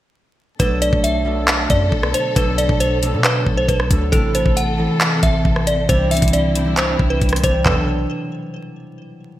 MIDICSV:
0, 0, Header, 1, 6, 480
1, 0, Start_track
1, 0, Tempo, 441176
1, 650, Time_signature, 4, 2, 24, 8
1, 10223, End_track
2, 0, Start_track
2, 0, Title_t, "Synth bell"
2, 0, Program_c, 0, 98
2, 650, Note_on_c, 0, 71, 90
2, 857, Note_off_c, 0, 71, 0
2, 890, Note_on_c, 0, 74, 84
2, 1097, Note_off_c, 0, 74, 0
2, 1129, Note_on_c, 0, 76, 87
2, 1806, Note_off_c, 0, 76, 0
2, 1852, Note_on_c, 0, 74, 85
2, 2302, Note_off_c, 0, 74, 0
2, 2330, Note_on_c, 0, 72, 73
2, 2537, Note_off_c, 0, 72, 0
2, 2575, Note_on_c, 0, 71, 84
2, 2780, Note_off_c, 0, 71, 0
2, 2808, Note_on_c, 0, 74, 86
2, 3015, Note_off_c, 0, 74, 0
2, 3049, Note_on_c, 0, 72, 88
2, 3501, Note_off_c, 0, 72, 0
2, 3530, Note_on_c, 0, 71, 90
2, 3868, Note_off_c, 0, 71, 0
2, 3889, Note_on_c, 0, 72, 82
2, 3992, Note_off_c, 0, 72, 0
2, 4008, Note_on_c, 0, 71, 81
2, 4460, Note_off_c, 0, 71, 0
2, 4484, Note_on_c, 0, 69, 93
2, 4693, Note_off_c, 0, 69, 0
2, 4732, Note_on_c, 0, 72, 71
2, 4938, Note_off_c, 0, 72, 0
2, 4969, Note_on_c, 0, 78, 84
2, 5646, Note_off_c, 0, 78, 0
2, 5688, Note_on_c, 0, 76, 80
2, 6140, Note_off_c, 0, 76, 0
2, 6170, Note_on_c, 0, 74, 82
2, 6377, Note_off_c, 0, 74, 0
2, 6408, Note_on_c, 0, 72, 100
2, 6616, Note_off_c, 0, 72, 0
2, 6650, Note_on_c, 0, 76, 90
2, 6856, Note_off_c, 0, 76, 0
2, 6890, Note_on_c, 0, 74, 78
2, 7341, Note_off_c, 0, 74, 0
2, 7370, Note_on_c, 0, 72, 88
2, 7708, Note_off_c, 0, 72, 0
2, 7727, Note_on_c, 0, 71, 77
2, 8067, Note_off_c, 0, 71, 0
2, 8093, Note_on_c, 0, 72, 96
2, 8298, Note_off_c, 0, 72, 0
2, 8329, Note_on_c, 0, 71, 88
2, 8553, Note_off_c, 0, 71, 0
2, 10223, End_track
3, 0, Start_track
3, 0, Title_t, "String section"
3, 0, Program_c, 1, 48
3, 651, Note_on_c, 1, 47, 77
3, 651, Note_on_c, 1, 50, 84
3, 651, Note_on_c, 1, 69, 94
3, 4452, Note_off_c, 1, 47, 0
3, 4452, Note_off_c, 1, 50, 0
3, 4452, Note_off_c, 1, 69, 0
3, 4491, Note_on_c, 1, 69, 96
3, 4492, Note_on_c, 1, 52, 84
3, 4492, Note_on_c, 1, 60, 79
3, 6391, Note_off_c, 1, 69, 0
3, 6392, Note_off_c, 1, 52, 0
3, 6409, Note_on_c, 1, 50, 84
3, 6409, Note_on_c, 1, 64, 93
3, 8292, Note_off_c, 1, 60, 0
3, 8310, Note_off_c, 1, 50, 0
3, 8310, Note_off_c, 1, 64, 0
3, 8330, Note_on_c, 1, 50, 77
3, 8330, Note_on_c, 1, 59, 70
3, 8330, Note_on_c, 1, 69, 85
3, 8553, Note_off_c, 1, 50, 0
3, 8553, Note_off_c, 1, 59, 0
3, 8553, Note_off_c, 1, 69, 0
3, 10223, End_track
4, 0, Start_track
4, 0, Title_t, "Harp"
4, 0, Program_c, 2, 46
4, 642, Note_on_c, 2, 47, 103
4, 647, Note_on_c, 2, 54, 92
4, 652, Note_on_c, 2, 57, 94
4, 657, Note_on_c, 2, 62, 94
4, 662, Note_on_c, 2, 69, 107
4, 1088, Note_off_c, 2, 57, 0
4, 1091, Note_off_c, 2, 62, 0
4, 1093, Note_off_c, 2, 69, 0
4, 1343, Note_off_c, 2, 47, 0
4, 1348, Note_off_c, 2, 54, 0
4, 1357, Note_on_c, 2, 47, 81
4, 1361, Note_on_c, 2, 54, 73
4, 1366, Note_on_c, 2, 57, 70
4, 1371, Note_on_c, 2, 62, 68
4, 1376, Note_on_c, 2, 69, 77
4, 2543, Note_off_c, 2, 47, 0
4, 2548, Note_off_c, 2, 54, 0
4, 2556, Note_on_c, 2, 47, 105
4, 2561, Note_off_c, 2, 57, 0
4, 2561, Note_on_c, 2, 54, 88
4, 2566, Note_on_c, 2, 57, 90
4, 2567, Note_off_c, 2, 62, 0
4, 2571, Note_off_c, 2, 69, 0
4, 2571, Note_on_c, 2, 62, 96
4, 2576, Note_on_c, 2, 69, 112
4, 3005, Note_off_c, 2, 57, 0
4, 3008, Note_off_c, 2, 62, 0
4, 3010, Note_off_c, 2, 69, 0
4, 3269, Note_off_c, 2, 47, 0
4, 3273, Note_off_c, 2, 54, 0
4, 3282, Note_on_c, 2, 47, 76
4, 3286, Note_on_c, 2, 54, 82
4, 3291, Note_on_c, 2, 57, 69
4, 3296, Note_on_c, 2, 62, 70
4, 3301, Note_on_c, 2, 69, 90
4, 3363, Note_off_c, 2, 57, 0
4, 3366, Note_off_c, 2, 62, 0
4, 3368, Note_off_c, 2, 69, 0
4, 3386, Note_off_c, 2, 47, 0
4, 3391, Note_off_c, 2, 54, 0
4, 3399, Note_on_c, 2, 47, 72
4, 3404, Note_on_c, 2, 54, 62
4, 3409, Note_on_c, 2, 57, 69
4, 3413, Note_on_c, 2, 62, 68
4, 3418, Note_on_c, 2, 69, 80
4, 4229, Note_off_c, 2, 47, 0
4, 4235, Note_off_c, 2, 54, 0
4, 4243, Note_on_c, 2, 47, 70
4, 4248, Note_off_c, 2, 57, 0
4, 4248, Note_on_c, 2, 54, 64
4, 4252, Note_off_c, 2, 62, 0
4, 4252, Note_on_c, 2, 57, 66
4, 4257, Note_off_c, 2, 69, 0
4, 4257, Note_on_c, 2, 62, 68
4, 4261, Note_on_c, 2, 69, 79
4, 4397, Note_off_c, 2, 57, 0
4, 4399, Note_off_c, 2, 62, 0
4, 4401, Note_off_c, 2, 69, 0
4, 4481, Note_on_c, 2, 48, 100
4, 4486, Note_on_c, 2, 52, 91
4, 4491, Note_on_c, 2, 57, 94
4, 4496, Note_on_c, 2, 64, 90
4, 4500, Note_on_c, 2, 69, 111
4, 4544, Note_off_c, 2, 47, 0
4, 4544, Note_off_c, 2, 54, 0
4, 4927, Note_off_c, 2, 57, 0
4, 4930, Note_off_c, 2, 64, 0
4, 4932, Note_off_c, 2, 69, 0
4, 5183, Note_off_c, 2, 48, 0
4, 5188, Note_off_c, 2, 52, 0
4, 5197, Note_on_c, 2, 48, 76
4, 5201, Note_on_c, 2, 52, 70
4, 5206, Note_on_c, 2, 57, 67
4, 5211, Note_on_c, 2, 64, 73
4, 5216, Note_on_c, 2, 69, 89
4, 6388, Note_off_c, 2, 48, 0
4, 6393, Note_off_c, 2, 52, 0
4, 6401, Note_on_c, 2, 48, 101
4, 6406, Note_on_c, 2, 52, 89
4, 6411, Note_on_c, 2, 55, 89
4, 6415, Note_on_c, 2, 62, 91
4, 6420, Note_on_c, 2, 67, 104
4, 6850, Note_off_c, 2, 62, 0
4, 6852, Note_off_c, 2, 67, 0
4, 7109, Note_off_c, 2, 48, 0
4, 7113, Note_off_c, 2, 52, 0
4, 7119, Note_off_c, 2, 55, 0
4, 7122, Note_on_c, 2, 48, 73
4, 7126, Note_on_c, 2, 52, 66
4, 7128, Note_on_c, 2, 55, 66
4, 7140, Note_on_c, 2, 62, 71
4, 7141, Note_on_c, 2, 67, 92
4, 7206, Note_off_c, 2, 62, 0
4, 7208, Note_off_c, 2, 67, 0
4, 7226, Note_off_c, 2, 48, 0
4, 7231, Note_off_c, 2, 52, 0
4, 7235, Note_off_c, 2, 55, 0
4, 7239, Note_on_c, 2, 48, 73
4, 7244, Note_on_c, 2, 52, 69
4, 7248, Note_on_c, 2, 55, 67
4, 7253, Note_on_c, 2, 62, 69
4, 7254, Note_off_c, 2, 64, 0
4, 7258, Note_on_c, 2, 64, 85
4, 7605, Note_off_c, 2, 69, 0
4, 7762, Note_off_c, 2, 62, 0
4, 7764, Note_off_c, 2, 64, 0
4, 8061, Note_off_c, 2, 48, 0
4, 8065, Note_off_c, 2, 52, 0
4, 8070, Note_off_c, 2, 55, 0
4, 8074, Note_on_c, 2, 48, 75
4, 8078, Note_on_c, 2, 52, 60
4, 8083, Note_on_c, 2, 55, 68
4, 8088, Note_on_c, 2, 62, 64
4, 8093, Note_on_c, 2, 67, 79
4, 8235, Note_off_c, 2, 62, 0
4, 8237, Note_off_c, 2, 67, 0
4, 8302, Note_on_c, 2, 47, 84
4, 8321, Note_on_c, 2, 54, 76
4, 8340, Note_on_c, 2, 62, 79
4, 8358, Note_on_c, 2, 69, 95
4, 8384, Note_off_c, 2, 48, 0
4, 8384, Note_off_c, 2, 52, 0
4, 8384, Note_off_c, 2, 55, 0
4, 8553, Note_off_c, 2, 47, 0
4, 8553, Note_off_c, 2, 54, 0
4, 8553, Note_off_c, 2, 62, 0
4, 8553, Note_off_c, 2, 69, 0
4, 8828, Note_off_c, 2, 57, 0
4, 10223, End_track
5, 0, Start_track
5, 0, Title_t, "808-style bass"
5, 0, Program_c, 3, 38
5, 650, Note_on_c, 3, 35, 119
5, 995, Note_off_c, 3, 35, 0
5, 1010, Note_on_c, 3, 35, 103
5, 1816, Note_off_c, 3, 35, 0
5, 1850, Note_on_c, 3, 42, 110
5, 2080, Note_off_c, 3, 42, 0
5, 2090, Note_on_c, 3, 35, 107
5, 2320, Note_off_c, 3, 35, 0
5, 2570, Note_on_c, 3, 35, 113
5, 2915, Note_off_c, 3, 35, 0
5, 2930, Note_on_c, 3, 35, 107
5, 3410, Note_on_c, 3, 47, 100
5, 3426, Note_off_c, 3, 35, 0
5, 3752, Note_off_c, 3, 47, 0
5, 3769, Note_on_c, 3, 35, 107
5, 4000, Note_off_c, 3, 35, 0
5, 4010, Note_on_c, 3, 35, 110
5, 4240, Note_off_c, 3, 35, 0
5, 4249, Note_on_c, 3, 38, 105
5, 4480, Note_off_c, 3, 38, 0
5, 4490, Note_on_c, 3, 33, 118
5, 4835, Note_off_c, 3, 33, 0
5, 4849, Note_on_c, 3, 33, 102
5, 5310, Note_off_c, 3, 33, 0
5, 5689, Note_on_c, 3, 33, 111
5, 5920, Note_off_c, 3, 33, 0
5, 5930, Note_on_c, 3, 33, 109
5, 6390, Note_off_c, 3, 33, 0
5, 6410, Note_on_c, 3, 36, 110
5, 6755, Note_off_c, 3, 36, 0
5, 6769, Note_on_c, 3, 36, 103
5, 7576, Note_off_c, 3, 36, 0
5, 7610, Note_on_c, 3, 36, 110
5, 7840, Note_off_c, 3, 36, 0
5, 7850, Note_on_c, 3, 36, 107
5, 8080, Note_off_c, 3, 36, 0
5, 8090, Note_on_c, 3, 36, 109
5, 8320, Note_off_c, 3, 36, 0
5, 8330, Note_on_c, 3, 35, 110
5, 8776, Note_off_c, 3, 35, 0
5, 10223, End_track
6, 0, Start_track
6, 0, Title_t, "Drums"
6, 650, Note_on_c, 9, 36, 122
6, 650, Note_on_c, 9, 42, 92
6, 759, Note_off_c, 9, 36, 0
6, 759, Note_off_c, 9, 42, 0
6, 890, Note_on_c, 9, 42, 80
6, 999, Note_off_c, 9, 42, 0
6, 1009, Note_on_c, 9, 36, 100
6, 1118, Note_off_c, 9, 36, 0
6, 1131, Note_on_c, 9, 42, 75
6, 1240, Note_off_c, 9, 42, 0
6, 1609, Note_on_c, 9, 42, 88
6, 1610, Note_on_c, 9, 37, 64
6, 1610, Note_on_c, 9, 39, 111
6, 1718, Note_off_c, 9, 42, 0
6, 1719, Note_off_c, 9, 37, 0
6, 1719, Note_off_c, 9, 39, 0
6, 1848, Note_on_c, 9, 42, 72
6, 1850, Note_on_c, 9, 36, 104
6, 1957, Note_off_c, 9, 42, 0
6, 1959, Note_off_c, 9, 36, 0
6, 2090, Note_on_c, 9, 36, 91
6, 2199, Note_off_c, 9, 36, 0
6, 2211, Note_on_c, 9, 37, 99
6, 2320, Note_off_c, 9, 37, 0
6, 2330, Note_on_c, 9, 42, 95
6, 2439, Note_off_c, 9, 42, 0
6, 2570, Note_on_c, 9, 36, 127
6, 2570, Note_on_c, 9, 42, 90
6, 2679, Note_off_c, 9, 36, 0
6, 2679, Note_off_c, 9, 42, 0
6, 2811, Note_on_c, 9, 42, 79
6, 2920, Note_off_c, 9, 42, 0
6, 2930, Note_on_c, 9, 36, 102
6, 3038, Note_off_c, 9, 36, 0
6, 3052, Note_on_c, 9, 42, 76
6, 3161, Note_off_c, 9, 42, 0
6, 3293, Note_on_c, 9, 42, 79
6, 3402, Note_off_c, 9, 42, 0
6, 3529, Note_on_c, 9, 42, 87
6, 3530, Note_on_c, 9, 37, 65
6, 3530, Note_on_c, 9, 39, 112
6, 3638, Note_off_c, 9, 42, 0
6, 3639, Note_off_c, 9, 37, 0
6, 3639, Note_off_c, 9, 39, 0
6, 3770, Note_on_c, 9, 36, 101
6, 3878, Note_off_c, 9, 36, 0
6, 4010, Note_on_c, 9, 36, 96
6, 4012, Note_on_c, 9, 42, 61
6, 4118, Note_off_c, 9, 36, 0
6, 4121, Note_off_c, 9, 42, 0
6, 4131, Note_on_c, 9, 37, 96
6, 4240, Note_off_c, 9, 37, 0
6, 4250, Note_on_c, 9, 36, 96
6, 4250, Note_on_c, 9, 42, 91
6, 4358, Note_off_c, 9, 36, 0
6, 4359, Note_off_c, 9, 42, 0
6, 4490, Note_on_c, 9, 36, 123
6, 4490, Note_on_c, 9, 42, 90
6, 4598, Note_off_c, 9, 36, 0
6, 4599, Note_off_c, 9, 42, 0
6, 4730, Note_on_c, 9, 42, 82
6, 4839, Note_off_c, 9, 42, 0
6, 4849, Note_on_c, 9, 36, 101
6, 4958, Note_off_c, 9, 36, 0
6, 4971, Note_on_c, 9, 42, 77
6, 5080, Note_off_c, 9, 42, 0
6, 5448, Note_on_c, 9, 42, 90
6, 5449, Note_on_c, 9, 37, 67
6, 5449, Note_on_c, 9, 39, 109
6, 5557, Note_off_c, 9, 42, 0
6, 5558, Note_off_c, 9, 37, 0
6, 5558, Note_off_c, 9, 39, 0
6, 5688, Note_on_c, 9, 42, 70
6, 5689, Note_on_c, 9, 36, 105
6, 5796, Note_off_c, 9, 42, 0
6, 5798, Note_off_c, 9, 36, 0
6, 5930, Note_on_c, 9, 36, 93
6, 6039, Note_off_c, 9, 36, 0
6, 6051, Note_on_c, 9, 37, 93
6, 6159, Note_off_c, 9, 37, 0
6, 6169, Note_on_c, 9, 42, 92
6, 6278, Note_off_c, 9, 42, 0
6, 6410, Note_on_c, 9, 36, 120
6, 6410, Note_on_c, 9, 42, 90
6, 6519, Note_off_c, 9, 36, 0
6, 6519, Note_off_c, 9, 42, 0
6, 6650, Note_on_c, 9, 42, 69
6, 6650, Note_on_c, 9, 46, 85
6, 6710, Note_off_c, 9, 42, 0
6, 6710, Note_on_c, 9, 42, 68
6, 6759, Note_off_c, 9, 46, 0
6, 6769, Note_on_c, 9, 36, 96
6, 6770, Note_off_c, 9, 42, 0
6, 6770, Note_on_c, 9, 42, 73
6, 6830, Note_off_c, 9, 42, 0
6, 6830, Note_on_c, 9, 42, 70
6, 6878, Note_off_c, 9, 36, 0
6, 6891, Note_off_c, 9, 42, 0
6, 6891, Note_on_c, 9, 42, 75
6, 7000, Note_off_c, 9, 42, 0
6, 7132, Note_on_c, 9, 42, 77
6, 7241, Note_off_c, 9, 42, 0
6, 7369, Note_on_c, 9, 42, 88
6, 7370, Note_on_c, 9, 39, 112
6, 7477, Note_off_c, 9, 42, 0
6, 7478, Note_off_c, 9, 39, 0
6, 7609, Note_on_c, 9, 36, 102
6, 7718, Note_off_c, 9, 36, 0
6, 7849, Note_on_c, 9, 42, 39
6, 7850, Note_on_c, 9, 36, 93
6, 7929, Note_off_c, 9, 42, 0
6, 7929, Note_on_c, 9, 42, 51
6, 7958, Note_off_c, 9, 36, 0
6, 7971, Note_on_c, 9, 37, 99
6, 8010, Note_off_c, 9, 42, 0
6, 8010, Note_on_c, 9, 42, 67
6, 8079, Note_off_c, 9, 37, 0
6, 8089, Note_off_c, 9, 42, 0
6, 8089, Note_on_c, 9, 42, 91
6, 8090, Note_on_c, 9, 36, 98
6, 8198, Note_off_c, 9, 36, 0
6, 8198, Note_off_c, 9, 42, 0
6, 8330, Note_on_c, 9, 36, 102
6, 8330, Note_on_c, 9, 39, 90
6, 8330, Note_on_c, 9, 43, 104
6, 8439, Note_off_c, 9, 36, 0
6, 8439, Note_off_c, 9, 39, 0
6, 8439, Note_off_c, 9, 43, 0
6, 10223, End_track
0, 0, End_of_file